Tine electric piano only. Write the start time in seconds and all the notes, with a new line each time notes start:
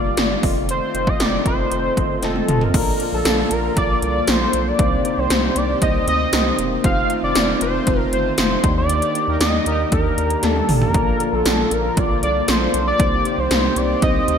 Already playing: G2 A#3 F4 G4 D5
0.17 A#3 F4 G4 D5
0.43 C4 F4 A4 D#5
0.94 C4 F4 A4 D#5
1.20 C4 F4 A4 D#5
1.46 C4 F4 A4 D#5
1.71 C4 F4 A4 C5
1.97 C4 F4 A4 D#5
2.22 C4 F4 A4 D#5
2.48 C4 F4 A4 D#5
2.74 A#2 A#3 D4 F4 A4 D5
2.99 A#3 D4 F4 A4 D5
3.25 A#3 D4 F4 A4 D5
3.51 A#3 D4 F4 A4 D5
3.76 A#3 D4 F4 A4 D5
4.02 A#3 D4 F4 A4 D5
4.28 A#3 D4 F4 A4 D5
4.53 A#3 D4 F4 A4 D5
4.79 C3 A#3 C4 D#4 G4 C5
5.04 A#3 C4 D#4 G4 C5
5.30 A#3 C4 D#4 G4 C5
5.56 A#3 C4 D#4 G4 C5
5.81 A#3 C4 D#4 G4 C5
6.07 A#3 C4 D#4 G4 C5
6.32 A#3 C4 D#4 G4 C5
6.58 A#3 C4 D#4 G4 C5
6.84 A3 C4 D#4 F4 C5
7.09 A3 C4 D#4 F4 C5
7.35 A3 C4 D#4 F4 C5
7.61 A3 C4 D#4 F4 C5
7.86 A3 C4 D#4 F4 C5
8.12 A3 C4 D#4 F4 C5
8.38 A3 C4 D#4 F4 C5
8.63 D#3 A#3 D4 D#4 G4 D5
9.15 A#3 D4 D#4 G4 D5
9.40 A#3 D4 D#4 G4 D5
9.66 A#3 D4 D#4 G4 D5
9.91 A#3 D4 D#4 G4 D5
10.17 A#3 D4 D#4 G4 D5
10.43 A#3 D4 D#4 G4 D5
10.68 A#3 D4 D#4 G4 D5
10.94 A#2 A#3 D4 F4 A4 D5
11.20 A#3 D4 F4 A4 D5
11.45 A#3 D4 F4 A4 D5
11.71 A#3 D4 F4 A4 D5
11.97 A#3 D4 F4 A4 D5
12.22 A#3 D4 F4 A4 D5
12.48 A#3 D4 F4 A4 D5
12.73 A#3 D4 F4 A4 D5
12.99 C3 A#3 C4 D#4 G4 C5
13.25 A#3 C4 D#4 G4 C5
13.50 A#3 C4 D#4 G4 C5
13.76 A#3 C4 D#4 G4 C5
14.02 A#3 C4 D#4 G4 C5
14.27 A#3 C4 D#4 G4 C5